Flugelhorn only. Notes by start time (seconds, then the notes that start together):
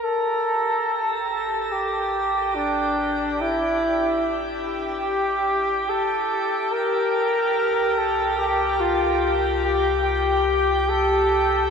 0.04 A4
1.29 A4
1.72 G4
2.55 D4
3.41 E4
4.66 G4
5.89 A4
6.71 A#4
7.98 A4
8.38 G4
8.80 F4
9.64 G4
10.03 G4
10.89 A4